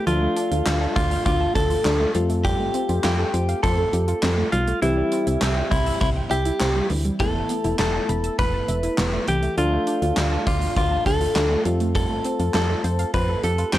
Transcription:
0.07 fm bass D2, synth pluck F3, synth keys A3 D4 F4 A4, clean electric guitar F4, closed hi-hat
0.22 synth pluck A3
0.36 synth pluck D4, closed hi-hat
0.51 fm bass D2, synth pluck F4, closed hi-hat
0.66 fm bass D2, synth pluck F5, snare, clap, closed hi-hat
0.81 synth pluck A5
0.96 fm bass D2, clean electric guitar F4, synth pluck D6, kick, closed hi-hat
1.11 synth pluck F6, closed hi-hat
1.26 fm bass D2, clean electric guitar F4, synth pluck D6, kick, closed hi-hat
1.41 synth pluck A5
1.55 fm bass D2, clean electric guitar A4, synth pluck F5, kick, closed hi-hat
1.70 synth pluck F4, closed hi-hat
1.85 fm bass D2, synth pluck D4, snare, clap, closed hi-hat
2.00 synth pluck A3
2.15 fm bass F2, synth pluck G3, synth keys A3 C4 F4 A4, closed hi-hat
2.30 synth pluck A3, closed hi-hat
2.45 synth pluck G3, clean electric guitar G4, kick, closed hi-hat
2.59 synth pluck A3
2.74 synth pluck C4, closed hi-hat
2.89 fm bass F2, synth pluck F4, closed hi-hat
3.04 fm bass F2, synth pluck G4, clean electric guitar G4, snare, clap, closed hi-hat
3.19 synth pluck A4
3.34 fm bass F2, synth pluck C5, closed hi-hat
3.49 synth pluck F5, closed hi-hat
3.63 fm bass F2, clean electric guitar A4, synth pluck C5, kick, closed hi-hat
3.78 synth pluck A4
3.93 fm bass F2, synth pluck G4, closed hi-hat
4.08 synth pluck F4, closed hi-hat
4.23 fm bass F2, synth pluck C4, snare, clap, closed hi-hat
4.38 synth pluck A3
4.52 fm bass B1, synth pluck G3, clean electric guitar F4, closed hi-hat
4.67 synth pluck A3, closed hi-hat
4.82 fm bass C2, synth pluck E3, synth keys G3 C4 E4 G4, clean electric guitar E4, closed hi-hat
4.97 synth pluck G3
5.12 synth pluck C4, closed hi-hat
5.27 fm bass C2, synth pluck E4, closed hi-hat
5.42 fm bass C2, synth pluck E5, snare, clap, closed hi-hat
5.57 synth pluck G5
5.71 fm bass C2, clean electric guitar E4, synth pluck C6, kick, closed hi-hat
5.86 synth pluck E6, closed hi-hat
6.01 fm bass C2, clean electric guitar E4, synth pluck C6, kick, closed hi-hat
6.16 synth pluck G5
6.31 fm bass C2, clean electric guitar G4, synth pluck E5, closed hi-hat
6.45 synth pluck E4, closed hi-hat
6.60 fm bass C2, synth pluck C4, snare, clap, closed hi-hat
6.76 synth pluck G3
6.90 fm bass D2, synth pluck E3, open hi-hat
7.05 synth pluck G3, closed hi-hat
7.20 fm bass E1, synth pluck E3, synth keys A3 B3 E4 A4, clean electric guitar A4, kick, closed hi-hat
7.35 synth pluck A3
7.49 synth pluck B3, closed hi-hat
7.64 fm bass E1, synth pluck E4, closed hi-hat
7.79 fm bass E1, clean electric guitar A4, synth pluck E5, snare, clap, closed hi-hat
7.94 synth pluck A5
8.09 fm bass E1, synth pluck B5, closed hi-hat
8.24 synth pluck E6, closed hi-hat
8.39 fm bass E1, clean electric guitar B4, synth pluck B5, kick, closed hi-hat
8.54 synth pluck A5
8.68 fm bass E1, synth pluck E5, closed hi-hat
8.83 synth pluck E4, closed hi-hat
8.98 fm bass E1, synth pluck B3, snare, clap, closed hi-hat
9.13 synth pluck A3
9.28 fm bass C2, synth pluck E3, clean electric guitar G4, closed hi-hat
9.43 synth pluck A3, closed hi-hat
9.57 fm bass D2, synth pluck F3, synth keys A3 D4 F4 A4, clean electric guitar F4, closed hi-hat
9.72 synth pluck A3
9.87 synth pluck D4, closed hi-hat
10.02 fm bass D2, synth pluck F4, closed hi-hat
10.17 fm bass D2, synth pluck F5, snare, clap, closed hi-hat
10.32 synth pluck A5
10.47 fm bass D2, clean electric guitar F4, synth pluck D6, kick, closed hi-hat
10.62 synth pluck F6, closed hi-hat
10.76 fm bass D2, clean electric guitar F4, synth pluck D6, kick, closed hi-hat
10.91 synth pluck A5
11.06 fm bass D2, clean electric guitar A4, synth pluck F5, kick, closed hi-hat
11.21 synth pluck F4, closed hi-hat
11.36 fm bass D2, synth pluck D4, snare, clap, closed hi-hat
11.51 synth pluck A3
11.65 fm bass F2, synth pluck G3, synth keys A3 C4 F4 A4, closed hi-hat
11.80 synth pluck A3, closed hi-hat
11.95 synth pluck G3, clean electric guitar A4, kick, closed hi-hat
12.10 synth pluck A3
12.24 synth pluck C4, closed hi-hat
12.40 fm bass F2, synth pluck F4, closed hi-hat
12.54 fm bass F2, synth pluck G4, clean electric guitar A4, snare, clap, closed hi-hat
12.70 synth pluck A4
12.84 fm bass F2, synth pluck C5, closed hi-hat
12.99 synth pluck F5, closed hi-hat
13.14 fm bass F2, clean electric guitar B4, synth pluck C5, kick, closed hi-hat
13.29 synth pluck A4
13.44 fm bass F2, synth pluck G4, clean electric guitar A4, closed hi-hat
13.58 synth pluck F4, closed hi-hat
13.73 fm bass F2, synth pluck C4, clean electric guitar G4, snare, clap, closed hi-hat

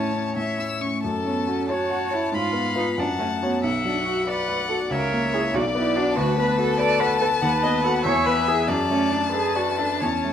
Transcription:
Already playing: grand piano A2 E4, cello C#4, violin C#5 A5
0.12 grand piano C#4
0.36 grand piano A2, violin E5
0.58 grand piano E4, violin E6
0.81 grand piano C#4, violin C#6
1.04 grand piano F#2, violin A4 A5
1.25 cello B3, grand piano C#4
1.47 cello C#4, grand piano F#4
1.69 cello F#4, grand piano C#5, violin C#5 A5
1.90 grand piano F#5
2.11 cello E4, grand piano C#5
2.32 grand piano G#2, cello F4, violin F5 B5
2.53 grand piano B3
2.75 cello D#4, grand piano F4 B4
2.98 grand piano F#2, cello D4, violin F#5 A5
3.19 grand piano A3, cello C#4
3.42 cello B3, grand piano F#4 C#5
3.63 grand piano B1, violin E5 F#5
3.84 grand piano F#3, cello D4
4.05 cello F#4, grand piano F#4
4.27 cello B4, grand piano D5, violin D5 F#5
4.48 grand piano F#5
4.69 grand piano F#4, cello A4
4.90 grand piano C#2, cello A#4, violin C#5 E5
5.12 grand piano A#3
5.32 grand piano E4 C#5, cello G#4
5.54 grand piano B1, cello F#4, violin D5
5.75 grand piano B3, cello E4
5.96 cello D4, grand piano F#4 D5
6.16 grand piano D2, cello F#4, violin B4 A5
6.38 grand piano B3, cello B4
6.58 grand piano F#4, cello A4
6.79 violin A4, grand piano B4, cello D5
7.00 cello B4, grand piano F#5
7.20 cello A4, grand piano B4
7.41 grand piano D#2, cello B4, violin F#5
7.63 grand piano B3, violin D#5
7.84 grand piano F#4 A4, violin F#5
8.05 grand piano E2, cello C#5, violin E5 G#5
8.26 grand piano B3, cello B4
8.47 grand piano E4 G#4, cello G#4
8.67 grand piano F#2, violin D5 A5
8.89 grand piano A3, cello C#4
9.11 cello D4, grand piano D4
9.32 cello G#4, grand piano A4, violin B4
9.55 cello F#4, grand piano D5
9.79 cello D4, grand piano A4
10.00 grand piano E2, cello C#4, violin C#5
10.24 grand piano A3

